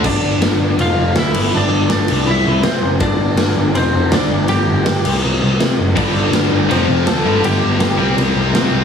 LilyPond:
<<
  \new Staff \with { instrumentName = "Lead electric guitar" } { \time 4/4 \key g \lydian \tempo 4 = 163 <d' d''>2 <f' f''>4 <e' e''>4 | <d' d''>4 <d' d''>4 <e' e''>4 <c' c''>8. r16 | <d' d''>2 <c' c''>4 <d' d''>4 | <g' g''>2 r2 |
<d' d''>2 <c' c''>4 <a' a''>4 | <g' g''>2 r2 | }
  \new Staff \with { instrumentName = "Distorted electric guitar" } { \clef bass \time 4/4 \key g \lydian r1 | r1 | r1 | r1 |
<g, d g>8 r4. <f, c f>8 r4 <g, d g>8 | r4. <c g c'>8 r2 | }
  \new Staff \with { instrumentName = "Distorted electric guitar" } { \clef bass \time 4/4 \key g \lydian r1 | r1 | r1 | r1 |
<g, d g>2 <f, c f>4. <g, d g>8~ | <g, d g>4. <c g c'>2~ <c g c'>8 | }
  \new Staff \with { instrumentName = "Picked electric bass" } { \clef bass \time 4/4 \key g \lydian g,,8 g,,8 g,,8 g,,8 f,,8 f,,8 d,8 g,,8 | g,,8 g,,8 g,,8 c,8 c,8 c,8 c8 fis,,8 | g,,8 g,,8 g,,8 g,,8 f,,8 f,,8 d,8 g,,8 | g,,8 g,,8 g,,8 c,8 c,8 c,8 c8 fis,,8 |
g,,8 g,,8 g,,8 g,,8 f,,8 f,,8 d,8 g,,8 | g,,8 g,,8 g,,8 c,8 c,8 c,8 c8 c,8 | }
  \new DrumStaff \with { instrumentName = "Drums" } \drummode { \time 4/4 <cymc bd>4 <cymr sn>4 cymr4 <cymr sn>8 cymc8 | r4 <cymr sn>8 cymc8 r4 <cymr sn>4 | <bd cymr>4 <cymr sn>4 cymr4 <cymr sn>4 | cymr4 <cymr sn>8 cymc8 r4 <cymr sn>4 |
<cymc bd>4 <cymr sn>4 cymr4 <cymr sn>4 | cymr4 <cymr sn>4 cymr4 <cymr sn>4 | }
>>